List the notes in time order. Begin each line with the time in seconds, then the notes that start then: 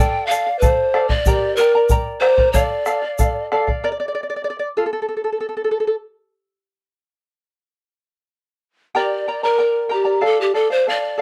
Already playing: G5
0.00 A4 D5 F5
0.27 A4 F5
0.31 D5 F5, shaker
0.46 D5 F5
0.59 A4 C5 D5 F5, bombo low, shaker
0.94 A4 D5 F5, bombo rim
1.09 D5 F5, bombo low
1.13 D5
1.26 G4 A#4 D5 G5 A#5, bombo low, shaker
1.56 A#4 D5 G5 A#5, shaker
1.75 A#4 D5 A#5
1.89 A#4 D5 G5 A#5, bombo low, shaker
2.20 A#4 C5 D5 G5 A#5, bombo rim
2.38 A#4 D5 A#5, bombo low
2.53 A4 D5 F5, bombo low, shaker
2.86 A4 D5 F5, bombo rim, shaker
3.02 D5 F5
3.19 A4 D5 F5, bombo low, shaker
3.52 A4 D5 F5, bombo rim
3.67 D5 F5, bombo low
3.84 A#4 D5
3.92 D5
4.00 D5
4.08 D5
4.15 D5
4.23 D5
4.30 D5
4.36 D5
4.44 D5
4.50 D5
4.59 D5
4.77 F4 A4
4.86 A4
4.93 A4
5.02 A4
5.09 A4
5.17 A4
5.24 A4
5.32 A4
5.40 A4
5.49 A4
5.57 A4
5.64 A4
5.71 A4
5.80 A4
5.87 A4
8.95 G4 A#4 D5 G5 A#5
9.28 A#4 D5 G5 A#5
9.43 A#4 D5 A#5
9.58 A#4 D5 G5 A#5
9.89 G4 A#4 D5 G5 A#5
10.05 A#4 D5 A#5
10.21 A4 D5 F5
10.25 A4
10.41 G4
10.54 A4 D5 F5
10.70 C5 D5 F5
10.87 A4 D5 F5
11.17 A4 D5